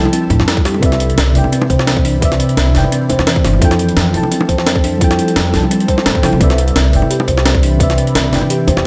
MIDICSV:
0, 0, Header, 1, 7, 480
1, 0, Start_track
1, 0, Key_signature, 0, "major"
1, 0, Tempo, 348837
1, 1138, Time_signature, 4, 2, 24, 8
1, 12201, End_track
2, 0, Start_track
2, 0, Title_t, "FM electric piano"
2, 0, Program_c, 0, 5
2, 0, Control_c, 0, 64, 127
2, 0, Note_on_c, 0, 53, 80
2, 0, Note_on_c, 0, 64, 74
2, 0, Note_on_c, 0, 69, 72
2, 0, Note_on_c, 0, 79, 106
2, 0, Note_on_c, 0, 81, 86
2, 1092, Note_off_c, 0, 53, 0
2, 1099, Note_on_c, 0, 48, 94
2, 1106, Note_off_c, 0, 64, 0
2, 1120, Note_off_c, 0, 69, 0
2, 1125, Note_on_c, 0, 71, 90
2, 1134, Note_off_c, 0, 81, 0
2, 1154, Control_c, 0, 64, 0
2, 1154, Note_on_c, 0, 74, 83
2, 1157, Note_off_c, 0, 79, 0
2, 1180, Note_on_c, 0, 76, 105
2, 1382, Control_c, 0, 64, 127
2, 1804, Note_off_c, 0, 48, 0
2, 1820, Note_on_c, 0, 48, 79
2, 1825, Note_off_c, 0, 71, 0
2, 1839, Note_off_c, 0, 74, 0
2, 1852, Note_off_c, 0, 76, 0
2, 1876, Note_on_c, 0, 74, 71
2, 1902, Note_on_c, 0, 79, 88
2, 2998, Note_off_c, 0, 48, 0
2, 3014, Note_on_c, 0, 48, 96
2, 3040, Note_off_c, 0, 74, 0
2, 3044, Note_on_c, 0, 71, 85
2, 3053, Note_off_c, 0, 79, 0
2, 3070, Note_on_c, 0, 74, 87
2, 3097, Note_on_c, 0, 76, 110
2, 3716, Note_off_c, 0, 48, 0
2, 3732, Note_on_c, 0, 48, 77
2, 3744, Note_off_c, 0, 71, 0
2, 3757, Note_off_c, 0, 74, 0
2, 3770, Note_off_c, 0, 76, 0
2, 3789, Note_on_c, 0, 74, 74
2, 3817, Note_on_c, 0, 79, 91
2, 4928, Note_off_c, 0, 48, 0
2, 4937, Note_on_c, 0, 53, 96
2, 4956, Note_off_c, 0, 74, 0
2, 4962, Note_on_c, 0, 64, 86
2, 4970, Note_off_c, 0, 79, 0
2, 4989, Note_on_c, 0, 69, 92
2, 4998, Control_c, 0, 64, 0
2, 5018, Note_on_c, 0, 79, 108
2, 5255, Control_c, 0, 64, 127
2, 5643, Note_off_c, 0, 53, 0
2, 5659, Note_on_c, 0, 53, 76
2, 5663, Note_off_c, 0, 64, 0
2, 5677, Note_off_c, 0, 69, 0
2, 5686, Note_on_c, 0, 64, 71
2, 5691, Note_off_c, 0, 79, 0
2, 5714, Note_on_c, 0, 69, 75
2, 5742, Note_on_c, 0, 81, 89
2, 6839, Note_off_c, 0, 53, 0
2, 6856, Note_on_c, 0, 53, 94
2, 6865, Note_off_c, 0, 64, 0
2, 6879, Note_off_c, 0, 69, 0
2, 6880, Note_on_c, 0, 64, 85
2, 6893, Note_off_c, 0, 81, 0
2, 6908, Note_on_c, 0, 69, 86
2, 6937, Note_on_c, 0, 79, 106
2, 7563, Note_off_c, 0, 53, 0
2, 7580, Note_on_c, 0, 53, 79
2, 7582, Note_off_c, 0, 64, 0
2, 7596, Note_off_c, 0, 69, 0
2, 7608, Note_on_c, 0, 64, 71
2, 7610, Note_off_c, 0, 79, 0
2, 7634, Note_on_c, 0, 69, 69
2, 7659, Note_on_c, 0, 81, 86
2, 8536, Note_off_c, 0, 53, 0
2, 8550, Note_off_c, 0, 64, 0
2, 8562, Note_on_c, 0, 53, 88
2, 8563, Note_off_c, 0, 69, 0
2, 8576, Note_off_c, 0, 81, 0
2, 8576, Note_on_c, 0, 64, 81
2, 8588, Note_on_c, 0, 69, 80
2, 8602, Note_on_c, 0, 79, 93
2, 8778, Note_on_c, 0, 48, 96
2, 8783, Note_off_c, 0, 53, 0
2, 8790, Note_off_c, 0, 64, 0
2, 8796, Note_off_c, 0, 69, 0
2, 8803, Note_off_c, 0, 79, 0
2, 8805, Note_on_c, 0, 71, 85
2, 8835, Note_on_c, 0, 74, 89
2, 8837, Control_c, 0, 64, 0
2, 8860, Note_on_c, 0, 76, 106
2, 9092, Control_c, 0, 64, 127
2, 9483, Note_off_c, 0, 48, 0
2, 9499, Note_on_c, 0, 48, 79
2, 9505, Note_off_c, 0, 71, 0
2, 9519, Note_off_c, 0, 74, 0
2, 9532, Note_off_c, 0, 76, 0
2, 9552, Note_on_c, 0, 74, 74
2, 9581, Note_on_c, 0, 79, 85
2, 10678, Note_off_c, 0, 48, 0
2, 10695, Note_on_c, 0, 48, 94
2, 10718, Note_off_c, 0, 74, 0
2, 10722, Note_on_c, 0, 71, 87
2, 10732, Note_off_c, 0, 79, 0
2, 10751, Note_on_c, 0, 74, 88
2, 10777, Note_on_c, 0, 76, 104
2, 11400, Note_off_c, 0, 48, 0
2, 11416, Note_on_c, 0, 48, 76
2, 11423, Note_off_c, 0, 71, 0
2, 11437, Note_off_c, 0, 74, 0
2, 11451, Note_off_c, 0, 76, 0
2, 11468, Note_on_c, 0, 74, 73
2, 11496, Note_on_c, 0, 79, 90
2, 12201, Note_off_c, 0, 48, 0
2, 12201, Note_off_c, 0, 74, 0
2, 12201, Note_off_c, 0, 79, 0
2, 12201, End_track
3, 0, Start_track
3, 0, Title_t, "Ambient pad"
3, 0, Program_c, 1, 92
3, 0, Note_on_c, 1, 55, 89
3, 0, Note_on_c, 1, 64, 79
3, 0, Note_on_c, 1, 69, 97
3, 1098, Note_off_c, 1, 64, 0
3, 1098, Note_off_c, 1, 69, 0
3, 1099, Note_off_c, 1, 55, 0
3, 1135, Note_on_c, 1, 52, 85
3, 1135, Note_on_c, 1, 62, 78
3, 1135, Note_on_c, 1, 83, 96
3, 4938, Note_off_c, 1, 52, 0
3, 4938, Note_off_c, 1, 62, 0
3, 4938, Note_off_c, 1, 83, 0
3, 4979, Note_on_c, 1, 55, 86
3, 4981, Note_on_c, 1, 69, 93
3, 4982, Note_on_c, 1, 64, 83
3, 8780, Note_off_c, 1, 55, 0
3, 8781, Note_off_c, 1, 64, 0
3, 8781, Note_off_c, 1, 69, 0
3, 8816, Note_on_c, 1, 52, 90
3, 8817, Note_on_c, 1, 62, 80
3, 8818, Note_on_c, 1, 83, 95
3, 12201, Note_off_c, 1, 52, 0
3, 12201, Note_off_c, 1, 62, 0
3, 12201, Note_off_c, 1, 83, 0
3, 12201, End_track
4, 0, Start_track
4, 0, Title_t, "Kalimba"
4, 0, Program_c, 2, 108
4, 0, Note_on_c, 2, 64, 80
4, 155, Note_off_c, 2, 64, 0
4, 177, Note_on_c, 2, 60, 103
4, 395, Note_off_c, 2, 60, 0
4, 416, Note_on_c, 2, 62, 97
4, 634, Note_off_c, 2, 62, 0
4, 658, Note_on_c, 2, 64, 75
4, 875, Note_off_c, 2, 64, 0
4, 897, Note_on_c, 2, 67, 75
4, 1126, Note_off_c, 2, 67, 0
4, 1137, Note_on_c, 2, 60, 83
4, 1361, Note_off_c, 2, 60, 0
4, 1377, Note_on_c, 2, 60, 76
4, 1601, Note_off_c, 2, 60, 0
4, 1618, Note_on_c, 2, 60, 78
4, 1755, Note_off_c, 2, 60, 0
4, 1859, Note_on_c, 2, 64, 77
4, 2076, Note_off_c, 2, 64, 0
4, 2096, Note_on_c, 2, 60, 106
4, 2314, Note_off_c, 2, 60, 0
4, 2337, Note_on_c, 2, 72, 103
4, 2475, Note_off_c, 2, 72, 0
4, 2579, Note_on_c, 2, 60, 101
4, 2796, Note_off_c, 2, 60, 0
4, 2819, Note_on_c, 2, 62, 103
4, 3036, Note_off_c, 2, 62, 0
4, 3059, Note_on_c, 2, 60, 79
4, 3283, Note_off_c, 2, 60, 0
4, 3300, Note_on_c, 2, 60, 78
4, 3527, Note_off_c, 2, 60, 0
4, 3541, Note_on_c, 2, 60, 76
4, 3677, Note_off_c, 2, 60, 0
4, 3779, Note_on_c, 2, 64, 79
4, 3996, Note_off_c, 2, 64, 0
4, 4019, Note_on_c, 2, 60, 101
4, 4236, Note_off_c, 2, 60, 0
4, 4258, Note_on_c, 2, 72, 102
4, 4395, Note_off_c, 2, 72, 0
4, 4498, Note_on_c, 2, 60, 99
4, 4715, Note_off_c, 2, 60, 0
4, 4738, Note_on_c, 2, 62, 106
4, 4955, Note_off_c, 2, 62, 0
4, 4977, Note_on_c, 2, 60, 82
4, 5202, Note_off_c, 2, 60, 0
4, 5218, Note_on_c, 2, 60, 78
4, 5443, Note_off_c, 2, 60, 0
4, 5460, Note_on_c, 2, 60, 75
4, 5596, Note_off_c, 2, 60, 0
4, 5698, Note_on_c, 2, 64, 75
4, 5916, Note_off_c, 2, 64, 0
4, 5938, Note_on_c, 2, 60, 100
4, 6156, Note_off_c, 2, 60, 0
4, 6176, Note_on_c, 2, 72, 101
4, 6314, Note_off_c, 2, 72, 0
4, 6417, Note_on_c, 2, 60, 100
4, 6635, Note_off_c, 2, 60, 0
4, 6657, Note_on_c, 2, 62, 106
4, 6875, Note_off_c, 2, 62, 0
4, 6898, Note_on_c, 2, 60, 78
4, 7122, Note_off_c, 2, 60, 0
4, 7138, Note_on_c, 2, 60, 76
4, 7359, Note_off_c, 2, 60, 0
4, 7375, Note_on_c, 2, 60, 76
4, 7514, Note_off_c, 2, 60, 0
4, 7617, Note_on_c, 2, 64, 79
4, 7835, Note_off_c, 2, 64, 0
4, 7858, Note_on_c, 2, 60, 101
4, 8075, Note_off_c, 2, 60, 0
4, 8095, Note_on_c, 2, 72, 105
4, 8234, Note_off_c, 2, 72, 0
4, 8337, Note_on_c, 2, 60, 99
4, 8555, Note_off_c, 2, 60, 0
4, 8578, Note_on_c, 2, 62, 99
4, 8795, Note_off_c, 2, 62, 0
4, 8817, Note_on_c, 2, 60, 84
4, 9040, Note_off_c, 2, 60, 0
4, 9056, Note_on_c, 2, 60, 77
4, 9281, Note_off_c, 2, 60, 0
4, 9298, Note_on_c, 2, 60, 79
4, 9435, Note_off_c, 2, 60, 0
4, 9538, Note_on_c, 2, 64, 80
4, 9755, Note_off_c, 2, 64, 0
4, 9775, Note_on_c, 2, 67, 84
4, 10005, Note_off_c, 2, 67, 0
4, 10018, Note_on_c, 2, 72, 106
4, 10155, Note_off_c, 2, 72, 0
4, 10257, Note_on_c, 2, 60, 101
4, 10475, Note_off_c, 2, 60, 0
4, 10497, Note_on_c, 2, 62, 102
4, 10715, Note_off_c, 2, 62, 0
4, 10737, Note_on_c, 2, 60, 80
4, 10960, Note_off_c, 2, 60, 0
4, 10976, Note_on_c, 2, 60, 80
4, 11201, Note_off_c, 2, 60, 0
4, 11218, Note_on_c, 2, 60, 76
4, 11355, Note_off_c, 2, 60, 0
4, 11457, Note_on_c, 2, 64, 77
4, 11675, Note_off_c, 2, 64, 0
4, 11697, Note_on_c, 2, 67, 85
4, 11926, Note_off_c, 2, 67, 0
4, 11937, Note_on_c, 2, 72, 101
4, 12074, Note_off_c, 2, 72, 0
4, 12201, End_track
5, 0, Start_track
5, 0, Title_t, "Upright bass"
5, 0, Program_c, 3, 32
5, 416, Note_on_c, 3, 45, 91
5, 532, Note_off_c, 3, 45, 0
5, 547, Note_on_c, 3, 41, 82
5, 1120, Note_off_c, 3, 41, 0
5, 1138, Note_on_c, 3, 36, 99
5, 1600, Note_off_c, 3, 36, 0
5, 1621, Note_on_c, 3, 36, 99
5, 1861, Note_on_c, 3, 31, 82
5, 1882, Note_off_c, 3, 36, 0
5, 1975, Note_off_c, 3, 31, 0
5, 2337, Note_on_c, 3, 36, 88
5, 3280, Note_off_c, 3, 36, 0
5, 3536, Note_on_c, 3, 36, 101
5, 3779, Note_on_c, 3, 31, 77
5, 3800, Note_off_c, 3, 36, 0
5, 3894, Note_off_c, 3, 31, 0
5, 4260, Note_on_c, 3, 40, 84
5, 4374, Note_off_c, 3, 40, 0
5, 4388, Note_on_c, 3, 40, 89
5, 4721, Note_off_c, 3, 40, 0
5, 4742, Note_on_c, 3, 31, 93
5, 4957, Note_off_c, 3, 31, 0
5, 4975, Note_on_c, 3, 41, 99
5, 5439, Note_off_c, 3, 41, 0
5, 5459, Note_on_c, 3, 41, 102
5, 5700, Note_on_c, 3, 36, 81
5, 5720, Note_off_c, 3, 41, 0
5, 5814, Note_off_c, 3, 36, 0
5, 6175, Note_on_c, 3, 41, 88
5, 7118, Note_off_c, 3, 41, 0
5, 7376, Note_on_c, 3, 41, 97
5, 7621, Note_on_c, 3, 36, 82
5, 7642, Note_off_c, 3, 41, 0
5, 7735, Note_off_c, 3, 36, 0
5, 8338, Note_on_c, 3, 45, 101
5, 8453, Note_off_c, 3, 45, 0
5, 8575, Note_on_c, 3, 36, 103
5, 8692, Note_off_c, 3, 36, 0
5, 8704, Note_on_c, 3, 36, 91
5, 8805, Note_off_c, 3, 36, 0
5, 8815, Note_on_c, 3, 36, 101
5, 9278, Note_off_c, 3, 36, 0
5, 9298, Note_on_c, 3, 36, 97
5, 9539, Note_on_c, 3, 31, 82
5, 9559, Note_off_c, 3, 36, 0
5, 9654, Note_off_c, 3, 31, 0
5, 10015, Note_on_c, 3, 36, 88
5, 10958, Note_off_c, 3, 36, 0
5, 11216, Note_on_c, 3, 36, 104
5, 11454, Note_on_c, 3, 31, 81
5, 11475, Note_off_c, 3, 36, 0
5, 11571, Note_off_c, 3, 31, 0
5, 11936, Note_on_c, 3, 40, 81
5, 12052, Note_off_c, 3, 40, 0
5, 12067, Note_on_c, 3, 40, 89
5, 12201, Note_off_c, 3, 40, 0
5, 12201, End_track
6, 0, Start_track
6, 0, Title_t, "Swell"
6, 0, Program_c, 4, 103
6, 7857, Note_on_c, 4, 60, 61
6, 8817, Note_off_c, 4, 60, 0
6, 12201, End_track
7, 0, Start_track
7, 0, Title_t, "Drums"
7, 73, Note_on_c, 9, 60, 71
7, 179, Note_on_c, 9, 42, 86
7, 211, Note_off_c, 9, 60, 0
7, 316, Note_off_c, 9, 42, 0
7, 413, Note_on_c, 9, 60, 70
7, 417, Note_on_c, 9, 36, 65
7, 419, Note_on_c, 9, 42, 61
7, 546, Note_on_c, 9, 40, 50
7, 550, Note_off_c, 9, 60, 0
7, 554, Note_off_c, 9, 36, 0
7, 557, Note_off_c, 9, 42, 0
7, 557, Note_on_c, 9, 60, 61
7, 658, Note_on_c, 9, 38, 122
7, 658, Note_on_c, 9, 42, 89
7, 684, Note_off_c, 9, 40, 0
7, 695, Note_off_c, 9, 60, 0
7, 785, Note_on_c, 9, 36, 116
7, 796, Note_off_c, 9, 38, 0
7, 796, Note_off_c, 9, 42, 0
7, 899, Note_on_c, 9, 40, 55
7, 899, Note_on_c, 9, 46, 82
7, 922, Note_off_c, 9, 36, 0
7, 1023, Note_on_c, 9, 60, 61
7, 1036, Note_off_c, 9, 40, 0
7, 1036, Note_off_c, 9, 46, 0
7, 1137, Note_on_c, 9, 36, 120
7, 1139, Note_on_c, 9, 42, 95
7, 1161, Note_off_c, 9, 60, 0
7, 1267, Note_off_c, 9, 42, 0
7, 1267, Note_on_c, 9, 40, 43
7, 1267, Note_on_c, 9, 42, 35
7, 1275, Note_off_c, 9, 36, 0
7, 1378, Note_off_c, 9, 42, 0
7, 1378, Note_on_c, 9, 42, 63
7, 1405, Note_off_c, 9, 40, 0
7, 1510, Note_off_c, 9, 42, 0
7, 1510, Note_on_c, 9, 42, 36
7, 1620, Note_off_c, 9, 42, 0
7, 1620, Note_on_c, 9, 38, 123
7, 1620, Note_on_c, 9, 42, 93
7, 1757, Note_off_c, 9, 38, 0
7, 1757, Note_off_c, 9, 42, 0
7, 1859, Note_on_c, 9, 46, 85
7, 1982, Note_on_c, 9, 60, 58
7, 1997, Note_off_c, 9, 46, 0
7, 2101, Note_on_c, 9, 42, 85
7, 2120, Note_off_c, 9, 60, 0
7, 2223, Note_on_c, 9, 60, 93
7, 2239, Note_off_c, 9, 42, 0
7, 2338, Note_on_c, 9, 36, 60
7, 2341, Note_on_c, 9, 42, 64
7, 2361, Note_off_c, 9, 60, 0
7, 2468, Note_on_c, 9, 40, 47
7, 2475, Note_off_c, 9, 36, 0
7, 2479, Note_off_c, 9, 42, 0
7, 2579, Note_on_c, 9, 38, 118
7, 2579, Note_on_c, 9, 42, 93
7, 2606, Note_off_c, 9, 40, 0
7, 2706, Note_on_c, 9, 36, 105
7, 2716, Note_off_c, 9, 38, 0
7, 2716, Note_off_c, 9, 42, 0
7, 2819, Note_on_c, 9, 46, 80
7, 2843, Note_off_c, 9, 36, 0
7, 2957, Note_off_c, 9, 46, 0
7, 3058, Note_on_c, 9, 36, 117
7, 3059, Note_on_c, 9, 42, 96
7, 3189, Note_off_c, 9, 42, 0
7, 3189, Note_on_c, 9, 40, 45
7, 3189, Note_on_c, 9, 42, 37
7, 3195, Note_off_c, 9, 36, 0
7, 3300, Note_off_c, 9, 42, 0
7, 3300, Note_on_c, 9, 42, 67
7, 3327, Note_off_c, 9, 40, 0
7, 3428, Note_off_c, 9, 42, 0
7, 3428, Note_on_c, 9, 42, 36
7, 3540, Note_off_c, 9, 42, 0
7, 3540, Note_on_c, 9, 38, 121
7, 3540, Note_on_c, 9, 42, 94
7, 3678, Note_off_c, 9, 38, 0
7, 3678, Note_off_c, 9, 42, 0
7, 3781, Note_on_c, 9, 38, 36
7, 3781, Note_on_c, 9, 46, 83
7, 3906, Note_on_c, 9, 60, 61
7, 3919, Note_off_c, 9, 38, 0
7, 3919, Note_off_c, 9, 46, 0
7, 4022, Note_on_c, 9, 42, 89
7, 4043, Note_off_c, 9, 60, 0
7, 4159, Note_off_c, 9, 42, 0
7, 4260, Note_on_c, 9, 60, 64
7, 4262, Note_on_c, 9, 42, 66
7, 4389, Note_on_c, 9, 40, 47
7, 4390, Note_off_c, 9, 60, 0
7, 4390, Note_on_c, 9, 60, 58
7, 4399, Note_off_c, 9, 42, 0
7, 4499, Note_on_c, 9, 38, 117
7, 4499, Note_on_c, 9, 42, 95
7, 4526, Note_off_c, 9, 40, 0
7, 4527, Note_off_c, 9, 60, 0
7, 4625, Note_on_c, 9, 36, 103
7, 4636, Note_off_c, 9, 38, 0
7, 4636, Note_off_c, 9, 42, 0
7, 4741, Note_on_c, 9, 40, 51
7, 4741, Note_on_c, 9, 46, 84
7, 4762, Note_off_c, 9, 36, 0
7, 4863, Note_on_c, 9, 60, 56
7, 4879, Note_off_c, 9, 40, 0
7, 4879, Note_off_c, 9, 46, 0
7, 4976, Note_on_c, 9, 36, 117
7, 4979, Note_on_c, 9, 42, 99
7, 5000, Note_off_c, 9, 60, 0
7, 5106, Note_off_c, 9, 42, 0
7, 5106, Note_on_c, 9, 40, 46
7, 5106, Note_on_c, 9, 42, 38
7, 5113, Note_off_c, 9, 36, 0
7, 5219, Note_off_c, 9, 42, 0
7, 5219, Note_on_c, 9, 42, 69
7, 5244, Note_off_c, 9, 40, 0
7, 5347, Note_off_c, 9, 42, 0
7, 5347, Note_on_c, 9, 42, 38
7, 5458, Note_off_c, 9, 42, 0
7, 5458, Note_on_c, 9, 38, 114
7, 5458, Note_on_c, 9, 42, 94
7, 5596, Note_off_c, 9, 38, 0
7, 5596, Note_off_c, 9, 42, 0
7, 5698, Note_on_c, 9, 46, 80
7, 5825, Note_on_c, 9, 60, 65
7, 5836, Note_off_c, 9, 46, 0
7, 5939, Note_on_c, 9, 42, 94
7, 5963, Note_off_c, 9, 60, 0
7, 6062, Note_on_c, 9, 60, 95
7, 6076, Note_off_c, 9, 42, 0
7, 6175, Note_on_c, 9, 36, 58
7, 6177, Note_on_c, 9, 42, 64
7, 6199, Note_off_c, 9, 60, 0
7, 6308, Note_on_c, 9, 40, 48
7, 6313, Note_off_c, 9, 36, 0
7, 6315, Note_off_c, 9, 42, 0
7, 6419, Note_on_c, 9, 38, 112
7, 6419, Note_on_c, 9, 42, 100
7, 6446, Note_off_c, 9, 40, 0
7, 6544, Note_on_c, 9, 36, 102
7, 6557, Note_off_c, 9, 38, 0
7, 6557, Note_off_c, 9, 42, 0
7, 6659, Note_on_c, 9, 46, 83
7, 6681, Note_off_c, 9, 36, 0
7, 6796, Note_off_c, 9, 46, 0
7, 6896, Note_on_c, 9, 36, 114
7, 6898, Note_on_c, 9, 42, 100
7, 7028, Note_off_c, 9, 42, 0
7, 7028, Note_on_c, 9, 40, 47
7, 7028, Note_on_c, 9, 42, 38
7, 7033, Note_off_c, 9, 36, 0
7, 7138, Note_off_c, 9, 42, 0
7, 7138, Note_on_c, 9, 42, 72
7, 7165, Note_off_c, 9, 40, 0
7, 7266, Note_off_c, 9, 42, 0
7, 7266, Note_on_c, 9, 42, 38
7, 7377, Note_off_c, 9, 42, 0
7, 7377, Note_on_c, 9, 38, 121
7, 7377, Note_on_c, 9, 42, 102
7, 7515, Note_off_c, 9, 38, 0
7, 7515, Note_off_c, 9, 42, 0
7, 7619, Note_on_c, 9, 38, 36
7, 7619, Note_on_c, 9, 46, 78
7, 7752, Note_on_c, 9, 60, 62
7, 7757, Note_off_c, 9, 38, 0
7, 7757, Note_off_c, 9, 46, 0
7, 7859, Note_on_c, 9, 42, 100
7, 7889, Note_off_c, 9, 60, 0
7, 7987, Note_off_c, 9, 42, 0
7, 7987, Note_on_c, 9, 42, 39
7, 8095, Note_on_c, 9, 36, 60
7, 8097, Note_off_c, 9, 42, 0
7, 8097, Note_on_c, 9, 42, 67
7, 8100, Note_on_c, 9, 60, 59
7, 8224, Note_off_c, 9, 60, 0
7, 8224, Note_on_c, 9, 60, 59
7, 8227, Note_on_c, 9, 40, 49
7, 8233, Note_off_c, 9, 36, 0
7, 8235, Note_off_c, 9, 42, 0
7, 8338, Note_on_c, 9, 38, 115
7, 8338, Note_on_c, 9, 42, 98
7, 8362, Note_off_c, 9, 60, 0
7, 8365, Note_off_c, 9, 40, 0
7, 8464, Note_on_c, 9, 36, 103
7, 8475, Note_off_c, 9, 38, 0
7, 8475, Note_off_c, 9, 42, 0
7, 8576, Note_on_c, 9, 40, 54
7, 8576, Note_on_c, 9, 46, 79
7, 8601, Note_off_c, 9, 36, 0
7, 8705, Note_on_c, 9, 60, 62
7, 8714, Note_off_c, 9, 40, 0
7, 8714, Note_off_c, 9, 46, 0
7, 8815, Note_on_c, 9, 36, 122
7, 8817, Note_on_c, 9, 42, 96
7, 8842, Note_off_c, 9, 60, 0
7, 8946, Note_off_c, 9, 42, 0
7, 8946, Note_on_c, 9, 40, 48
7, 8946, Note_on_c, 9, 42, 38
7, 8953, Note_off_c, 9, 36, 0
7, 9058, Note_off_c, 9, 42, 0
7, 9058, Note_on_c, 9, 42, 75
7, 9084, Note_off_c, 9, 40, 0
7, 9187, Note_off_c, 9, 42, 0
7, 9187, Note_on_c, 9, 42, 38
7, 9299, Note_off_c, 9, 42, 0
7, 9299, Note_on_c, 9, 38, 125
7, 9299, Note_on_c, 9, 42, 98
7, 9436, Note_off_c, 9, 38, 0
7, 9436, Note_off_c, 9, 42, 0
7, 9539, Note_on_c, 9, 46, 75
7, 9661, Note_on_c, 9, 60, 69
7, 9677, Note_off_c, 9, 46, 0
7, 9779, Note_on_c, 9, 42, 99
7, 9799, Note_off_c, 9, 60, 0
7, 9905, Note_on_c, 9, 60, 89
7, 9916, Note_off_c, 9, 42, 0
7, 10015, Note_on_c, 9, 36, 64
7, 10019, Note_on_c, 9, 42, 68
7, 10042, Note_off_c, 9, 60, 0
7, 10149, Note_on_c, 9, 40, 51
7, 10152, Note_off_c, 9, 36, 0
7, 10157, Note_off_c, 9, 42, 0
7, 10259, Note_on_c, 9, 38, 119
7, 10259, Note_on_c, 9, 42, 97
7, 10286, Note_off_c, 9, 40, 0
7, 10383, Note_on_c, 9, 36, 110
7, 10397, Note_off_c, 9, 38, 0
7, 10397, Note_off_c, 9, 42, 0
7, 10500, Note_on_c, 9, 46, 77
7, 10521, Note_off_c, 9, 36, 0
7, 10638, Note_off_c, 9, 46, 0
7, 10735, Note_on_c, 9, 36, 121
7, 10740, Note_on_c, 9, 42, 98
7, 10869, Note_off_c, 9, 42, 0
7, 10869, Note_on_c, 9, 40, 50
7, 10869, Note_on_c, 9, 42, 38
7, 10872, Note_off_c, 9, 36, 0
7, 10980, Note_off_c, 9, 42, 0
7, 10980, Note_on_c, 9, 42, 70
7, 11007, Note_off_c, 9, 40, 0
7, 11108, Note_off_c, 9, 42, 0
7, 11108, Note_on_c, 9, 42, 37
7, 11218, Note_off_c, 9, 42, 0
7, 11218, Note_on_c, 9, 38, 127
7, 11218, Note_on_c, 9, 42, 96
7, 11356, Note_off_c, 9, 38, 0
7, 11356, Note_off_c, 9, 42, 0
7, 11460, Note_on_c, 9, 38, 40
7, 11460, Note_on_c, 9, 46, 80
7, 11577, Note_on_c, 9, 60, 62
7, 11597, Note_off_c, 9, 38, 0
7, 11597, Note_off_c, 9, 46, 0
7, 11698, Note_on_c, 9, 42, 89
7, 11714, Note_off_c, 9, 60, 0
7, 11836, Note_off_c, 9, 42, 0
7, 11937, Note_on_c, 9, 60, 62
7, 11941, Note_on_c, 9, 42, 65
7, 12064, Note_off_c, 9, 60, 0
7, 12064, Note_on_c, 9, 60, 63
7, 12069, Note_on_c, 9, 40, 51
7, 12078, Note_off_c, 9, 42, 0
7, 12201, Note_off_c, 9, 40, 0
7, 12201, Note_off_c, 9, 60, 0
7, 12201, End_track
0, 0, End_of_file